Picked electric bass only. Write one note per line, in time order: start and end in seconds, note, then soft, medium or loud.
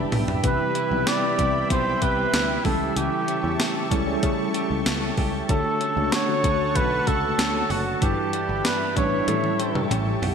0.12 0.36 B1 medium
0.44 0.56 C2 loud
0.91 1.03 B1 medium
1.39 1.62 C2 loud
1.70 1.94 B1 medium
2.02 2.26 C2 loud
2.33 2.57 D2 medium
2.65 2.89 C#2 loud
2.96 3.08 C#2 loud
3.44 3.56 E2 medium
3.91 4.15 C#2 medium
4.23 4.47 C#3 loud
4.71 4.82 C#2 medium
4.86 5.10 C#2 loud
5.18 5.41 C#2 loud
5.49 5.61 D2 loud
5.97 6.09 C#2 medium
6.44 6.77 D2 loud
6.76 6.99 B1 medium
7.07 7.31 C#2 medium
7.39 7.62 D2 loud
7.70 7.94 F#1 loud
8.02 8.14 G1 loud
8.49 8.61 G1 medium
8.97 9.20 A1 medium
9.28 9.52 A2 loud
9.75 9.87 G2 loud
9.91 10.15 A1 medium
10.22 10.35 B1 medium